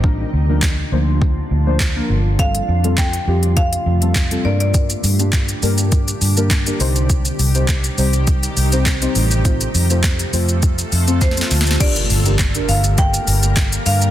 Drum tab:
CC |------------------------------------------------|------------------------------------------------|------------------------------------------------|------------------------------------------------|
HH |------------------------------------------------|x--x-----x--x--x-----x--x--x-----x--x--x-----x--|x--x--o--x--x--x--o--x--x--x--o--x--x--x--o--x--|x--x--o--x--x--x--o--x--x--x--o--x--x--x--o--x--|
SH |------------------------------------------------|------------------------------------------------|x--x--x--x--x--x--x--x--x--x--x--x--x--x--x--x--|x--x--x--x--x--x--x--x--x--x--x--x--x--x--x--x--|
CP |------------x-----------------------x-----------|------------x-----------------------x-----------|------------x-----------------------x-----------|------------x-----------------------x-----------|
SD |------------o-----------------------o-----------|------------o-----------------------o-----------|------------o-----------------------o-----------|------------o-----------------------o-----------|
BD |o-----------o-----------o-----------o-----------|o-----------o-----------o-----------o-----------|o-----------o-----------o-----------o-----------|o-----------o-----------o-----------o-----------|

CC |------------------------------------------------|x-----------------------------------------------|
HH |x--x--o--x--x--x--o--x--x--x--o--x--x--x--o--x--|x--x--o--x--x--x--o--x--x--x--o--x--x--x--o--x--|
SH |x--x--x--x--x--x--x--x--x--x--x--x--x--x--x--x--|x--x--x--x--x--x--x--x--x--x--x--x--x--x--x--x--|
CP |------------x-----------------------------------|------------x-----------------------x-----------|
SD |------------o-----------------------o-o-o-o-o-o-|------------o-----------------------o-----------|
BD |o-----------o-----------o-----------o-----------|o-----------o-----------o-----------o-----------|